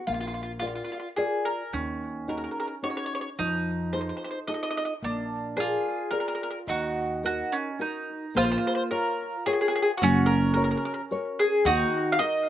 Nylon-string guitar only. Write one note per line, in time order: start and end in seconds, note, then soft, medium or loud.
0.07 0.60 A#3 soft
0.61 1.06 F4 soft
0.61 1.06 A#4 soft
0.61 1.07 D5 soft
1.17 1.62 F4 soft
1.17 1.62 A#4 soft
1.17 1.62 D5 soft
1.73 2.27 D#3 soft
2.28 2.73 C#4 soft
2.28 2.73 D#4 soft
2.28 2.73 F#4 soft
2.82 3.27 C#4 soft
2.82 3.28 D#4 soft
2.82 3.28 F#4 soft
3.39 3.92 F3 soft
3.93 4.37 D#4 soft
3.93 4.38 F4 soft
3.93 4.38 A4 soft
4.48 4.92 D#4 soft
4.48 4.92 F4 soft
4.48 4.92 A4 soft
5.03 5.56 A#3 medium
5.56 6.01 G#4 soft
5.56 6.01 A#4 soft
5.56 6.02 D5 soft
6.11 6.56 G#4 soft
6.11 6.57 A#4 soft
6.11 6.57 D5 soft
6.67 7.22 D#3 soft
7.23 7.69 D#4 soft
7.23 7.69 F#4 soft
7.23 7.69 A#4 soft
7.79 8.25 D#4 soft
7.79 8.25 F#4 soft
7.79 8.25 A#4 soft
8.35 8.89 A#3 medium
8.91 9.36 F4 soft
8.91 9.36 A#4 soft
8.91 9.36 C#5 soft
9.46 9.91 F4 medium
9.46 9.91 A#4 soft
9.46 9.91 C#5 soft
10.01 10.55 F#3 medium
10.56 11.00 F#4 soft
10.56 11.01 A#4 soft
10.56 11.01 C#5 soft
11.11 11.55 F#4 soft
11.11 11.55 A#4 soft
11.11 11.55 C#5 medium
11.66 12.18 D#3 medium
12.20 12.49 D#4 soft
12.20 12.49 F#4 soft
12.20 12.49 A#4 soft